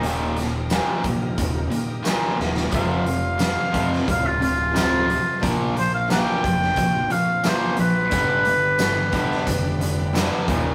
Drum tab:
HH |x-x-x-x-x-x-x---|x-x-x-x-x-x-x-x-|x-x-x-x-x-x-x-x-|x-x-x-x-x-x-x-x-|
TB |----x-------x---|----x-------x---|----x-------x---|----x-------x---|
SD |--o-o-------o-oo|----o--o----o---|----o--o----o---|----o--o----o---|
BD |------o-o-------|o-----o-o-------|o-----o-o-------|o-----o-o-----o-|